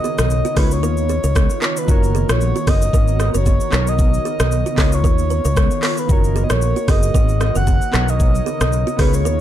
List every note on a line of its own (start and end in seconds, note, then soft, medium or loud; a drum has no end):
0.00 0.56 C#3 medium
0.00 0.53 B3 medium
0.00 0.55 D#4 medium
0.00 0.56 D#4 medium
0.00 0.54 A#4 medium
0.00 0.55 A#4 medium
0.00 0.56 C#5 medium
0.00 0.60 D#5 loud
0.00 downlifter medium
0.04 0.12 G#4 medium
0.04 shaker medium
0.18 0.41 B1 medium
0.18 0.26 A#4 medium
0.18 cross-stick loud
0.18 shaker medium
0.30 shaker medium
0.45 0.52 F#4 medium
0.45 shaker medium
0.54 0.83 C#2 loud
0.54 3.69 D#3 medium
0.54 1.85 B3 medium
0.54 1.87 B3 medium
0.54 1.85 D#4 medium
0.54 1.87 F4 medium
0.54 1.86 F4 medium
0.54 0.65 G#4 medium
0.54 kick medium
0.54 cross-stick medium
0.54 open hi-hat medium
0.54 shaker medium
0.58 0.72 B4 loud
0.58 1.87 C#5 medium
0.71 1.59 C#5 loud
0.71 shaker medium
0.83 1.18 D#2 loud
0.83 0.91 A#4 medium
0.83 shaker medium
0.97 shaker medium
1.09 1.18 G#4 medium
1.09 shaker medium
1.24 1.46 C#2 medium
1.24 1.31 A#4 medium
1.24 shaker loud
1.36 1.44 G#4 medium
1.36 kick medium
1.36 cross-stick loud
1.36 shaker medium
1.50 shaker medium
1.62 1.70 A#4 medium
1.62 1.80 C#5 medium
1.62 clap medium
1.62 shaker medium
1.77 1.89 B4 medium
1.77 shaker loud
1.86 2.23 F#1 loud
1.86 3.68 A#3 medium
1.86 3.69 D#4 medium
1.86 3.71 F#4 medium
1.86 3.69 F#4 medium
1.86 4.75 A#4 medium
1.86 kick loud
1.86 shaker medium
1.90 2.27 A#4 loud
1.90 3.70 C#5 medium
2.03 shaker medium
2.15 2.23 G#4 medium
2.15 shaker medium
2.29 2.51 A#1 medium
2.29 2.37 A#4 medium
2.29 2.71 C#5 loud
2.29 cross-stick loud
2.29 shaker medium
2.41 shaker medium
2.56 2.63 F#4 medium
2.56 shaker medium
2.67 2.90 F#1 medium
2.67 2.76 G#4 medium
2.67 3.21 D#5 loud
2.67 kick loud
2.67 cross-stick medium
2.67 open hi-hat medium
2.67 shaker medium
2.82 shaker medium
2.93 3.28 G#1 loud
2.93 3.02 A#4 medium
2.93 kick loud
2.93 shaker medium
3.08 shaker medium
3.20 3.28 G#4 medium
3.20 3.28 D#5 loud
3.20 cross-stick medium
3.20 shaker medium
3.34 3.57 F#1 medium
3.34 3.42 A#4 medium
3.34 3.90 C#5 loud
3.34 shaker medium
3.46 3.54 G#4 medium
3.46 kick medium
3.46 shaker medium
3.60 shaker medium
3.70 4.17 B1 loud
3.70 4.77 C#3 medium
3.70 4.74 B3 medium
3.70 4.75 D#4 medium
3.70 4.77 D#4 medium
3.70 3.81 A#4 medium
3.70 4.76 A#4 medium
3.70 cross-stick medium
3.70 clap medium
3.70 shaker medium
3.75 4.77 C#5 medium
3.87 4.79 D#5 loud
3.87 shaker loud
3.99 kick loud
3.99 shaker medium
4.14 shaker medium
4.25 4.33 G#4 medium
4.25 shaker medium
4.40 4.62 B1 medium
4.40 4.47 A#4 medium
4.40 cross-stick loud
4.40 shaker medium
4.52 shaker medium
4.66 4.73 F#4 medium
4.66 shaker medium
4.75 5.04 C#2 medium
4.75 7.91 D#3 medium
4.75 6.05 B3 medium
4.75 6.08 B3 medium
4.75 6.06 D#4 medium
4.75 6.08 F4 medium
4.75 6.07 F4 medium
4.75 4.86 G#4 medium
4.75 kick loud
4.75 cross-stick loud
4.75 clap medium
4.75 open hi-hat medium
4.75 shaker medium
4.79 6.08 C#5 medium
4.79 4.95 D#5 medium
4.92 5.84 C#5 loud
4.92 shaker medium
5.04 5.38 D#2 loud
5.04 5.12 A#4 medium
5.04 kick loud
5.04 shaker medium
5.18 shaker medium
5.30 5.38 B4 medium
5.30 shaker medium
5.45 5.67 C#2 medium
5.45 5.52 A#4 medium
5.45 shaker loud
5.57 5.65 B4 medium
5.57 kick medium
5.57 cross-stick loud
5.57 shaker medium
5.71 shaker medium
5.83 5.91 C#5 medium
5.83 5.97 C#5 medium
5.83 cross-stick medium
5.83 clap medium
5.83 open hi-hat medium
5.83 shaker medium
5.97 6.13 B4 medium
5.97 shaker medium
6.07 6.44 F#1 loud
6.07 7.89 A#3 medium
6.07 7.90 D#4 medium
6.07 7.92 F#4 medium
6.07 7.90 F#4 medium
6.07 8.96 A#4 medium
6.07 kick loud
6.07 shaker medium
6.11 6.43 A#4 medium
6.11 7.91 C#5 medium
6.24 shaker medium
6.36 6.44 G#4 medium
6.36 shaker medium
6.44 6.53 D#5 medium
6.50 6.72 A#1 medium
6.50 6.58 A#4 medium
6.50 6.91 C#5 loud
6.50 cross-stick loud
6.50 shaker medium
6.62 shaker medium
6.76 6.84 F#4 medium
6.76 shaker medium
6.88 7.11 F#1 medium
6.88 6.97 G#4 medium
6.88 7.42 D#5 loud
6.88 kick loud
6.88 cross-stick medium
6.88 open hi-hat medium
6.88 shaker medium
7.03 shaker medium
7.14 7.49 G#1 loud
7.14 7.23 A#4 medium
7.14 kick loud
7.14 shaker medium
7.29 shaker medium
7.41 7.49 G#4 medium
7.41 7.55 D#5 loud
7.41 cross-stick medium
7.41 shaker medium
7.55 7.78 F#1 medium
7.55 7.63 A#4 medium
7.55 8.11 F#5 loud
7.55 shaker medium
7.67 7.75 G#4 medium
7.67 kick medium
7.67 shaker medium
7.82 shaker medium
7.91 8.38 B1 loud
7.91 8.98 C#3 medium
7.91 8.95 B3 medium
7.91 8.00 D4 soft
7.91 8.98 D#4 medium
7.91 8.02 A#4 medium
7.91 8.97 A#4 medium
7.91 cross-stick medium
7.91 clap medium
7.91 shaker medium
7.96 8.97 D#4 medium
7.96 8.98 C#5 medium
8.08 9.00 D#5 loud
8.08 shaker loud
8.20 kick loud
8.20 shaker medium
8.35 shaker medium
8.46 8.54 G#4 medium
8.46 shaker medium
8.61 8.83 B1 medium
8.61 8.68 A#4 medium
8.61 cross-stick loud
8.61 shaker medium
8.73 shaker medium
8.87 8.95 F#4 medium
8.87 shaker medium
8.97 9.25 C#2 loud
8.97 9.41 D#3 medium
8.97 9.41 B3 medium
8.97 9.41 D#4 medium
8.97 9.41 F4 medium
8.97 9.08 G#4 medium
8.97 9.16 B4 medium
8.97 kick medium
8.97 cross-stick medium
8.97 open hi-hat medium
8.97 shaker medium
9.02 9.41 C#5 medium
9.13 9.41 C#5 loud
9.13 shaker medium
9.25 9.41 D#2 loud
9.25 9.33 A#4 medium
9.25 shaker medium